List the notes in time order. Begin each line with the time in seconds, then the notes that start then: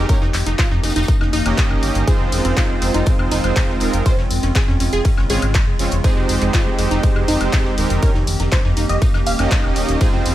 Already playing: D#3 G4
0.09 A#3 C#4 D#4 G4 A#4 C#5, kick, closed hi-hat, tambourine
0.22 F1 D#4, snare
0.34 F1, clap, open hi-hat, tambourine
0.46 F1 D#4, snare, closed hi-hat
0.59 F4, kick, snare, clap, closed hi-hat, tambourine
0.71 F2 D#4, snare
0.83 F1 D#4, snare, open hi-hat, tambourine
0.90 snare, tambourine
0.96 F1 D#4, snare, closed hi-hat, tambourine
1.02 snare, tambourine
1.08 D#4, kick, closed hi-hat, tambourine
1.21 F1 D#4, snare, high woodblock
1.33 F1 D#4, open hi-hat, tambourine
1.46 F1 A#3 C#4 D#4 G4 D#5, closed hi-hat, high woodblock
1.57 kick, snare, clap, closed hi-hat, tambourine
1.70 G1, high woodblock
1.83 G1, open hi-hat, tambourine
1.95 G1, closed hi-hat
2.07 G#3 C4 D#4 F4 G#4 C5, kick, closed hi-hat, ride, tambourine
2.20 F1 C4
2.32 F1, open hi-hat, ride, tambourine
2.45 F1 C4, closed hi-hat
2.57 F4, kick, snare, clap, closed hi-hat, ride, tambourine
2.70 F1 C4
2.82 F1 C4, open hi-hat, ride, tambourine
2.94 F1 D#4, snare, closed hi-hat
3.06 C4, kick, closed hi-hat, ride, tambourine
3.19 F1 C4, high woodblock
3.31 F1 D#4, open hi-hat, ride, tambourine
3.44 F1 G#3 C4 D#4 F4 C5, closed hi-hat, high woodblock
3.56 kick, snare, clap, closed hi-hat, ride, tambourine
3.69 F1, snare
3.80 D#1 G#3 C4 D#4 F4 A#4, open hi-hat, ride, tambourine
3.93 F1, closed hi-hat
4.06 C#3 G#3 C4 C#4 F4 C5, kick, closed hi-hat, ride, tambourine
4.18 F1 C#4, snare
4.31 F1, open hi-hat, ride, tambourine
4.43 F1 C#4, snare, closed hi-hat
4.55 G#4, kick, snare, clap, closed hi-hat, ride, tambourine
4.68 F2 C#4, snare
4.80 F1 C#4, open hi-hat, ride, tambourine
4.93 F1 G#4, closed hi-hat
5.05 C#4, kick, closed hi-hat, ride, tambourine
5.17 G#1 C#4, snare, high woodblock
5.30 G#1 G#3 C4 C#4 F4 G#4 C#5, open hi-hat, ride, tambourine
5.42 G#1, closed hi-hat, high woodblock
5.54 kick, snare, clap, closed hi-hat, ride, tambourine
5.67 F1
5.79 F1 G#3 C4 C#4 F4 C#5, open hi-hat, ride, tambourine
5.91 F1, closed hi-hat
6.04 D#3 G#3 C4 D#4 G4 G#4 C5, kick, closed hi-hat, ride, tambourine
6.17 F1 G#3
6.29 F1, open hi-hat, ride, tambourine
6.42 F1 G#3, closed hi-hat
6.53 F4, kick, snare, clap, closed hi-hat, ride, tambourine
6.66 F1 G#3
6.79 F1 G#3, open hi-hat, ride, tambourine
6.91 F1 D#4, snare, closed hi-hat
7.03 G#3, kick, closed hi-hat, ride, tambourine
7.16 F1 G#3, high woodblock
7.28 F1 D#4, open hi-hat, ride, tambourine
7.41 F1 G#3 C4 D#4 G4 C5, closed hi-hat, high woodblock
7.53 kick, snare, clap, closed hi-hat, ride, tambourine
7.65 F1, snare
7.78 D#1 G#3 C4 D#4 G4 A#4, open hi-hat, ride, tambourine
7.90 F1, closed hi-hat
8.02 A#3 C#4 D#4 G4 A#4 C#5, kick, closed hi-hat, ride, tambourine
8.15 F1 D#4, snare
8.27 F1, open hi-hat, ride, tambourine
8.40 F1 D#4, snare, closed hi-hat
8.52 C5, kick, snare, clap, closed hi-hat, ride, tambourine
8.65 F2 D#4, snare
8.77 F1 D#4, open hi-hat, ride, tambourine
8.89 F1 D#5, closed hi-hat
9.02 D#4, kick, closed hi-hat, ride, tambourine
9.14 F1 D#4, snare, high woodblock
9.26 D#1 F5, open hi-hat, ride, tambourine
9.39 F1 A#3 C#4 D#4 G4 D#5, closed hi-hat, high woodblock
9.51 kick, snare, clap, closed hi-hat, ride, tambourine
9.64 D#1, high woodblock
9.76 D#1, open hi-hat, ride, tambourine
9.89 D#1, closed hi-hat
10.01 G#3 C4 D#4 F4 G#4 C5, kick, closed hi-hat, ride, tambourine
10.13 F1 C4
10.26 F1, open hi-hat, ride, tambourine